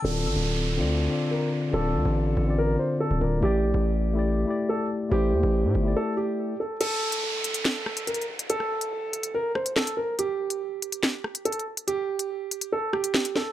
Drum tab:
CC |------------------------------------------------|------------------------------------------------|------------------------------------------------|------------------------------------------------|
HH |------------------------------------------------|------------------------------------------------|------------------------------------------------|------------------------------------------------|
CP |------------------------------------------------|------------------------------------------------|------------------------------------------------|------------------------------------------------|
SD |------------------------------------------------|------------------------------------------------|------------------------------------------------|------------------------------------------------|

CC |x-----------------------------------------------|------------------------------------------------|------------------------------------------------|------------------------------------------------|
HH |x--------x--------x--x-----------x--x-x-x----x--|x--------x--------x--x-----------x-----x--------|x--------x--------x--x-----------x--x-x-x----x--|x--------x--------x--x-----------x-----x--------|
CP |------------------------x-----------------------|------------------------------------x-----------|------------------------x-----------------------|------------------------------------x-----------|
SD |------------------------o-----r-----------------|---r--------------------------r-----o-----------|------------------------o-----r-----------------|------------------------------r-----o-----o-----|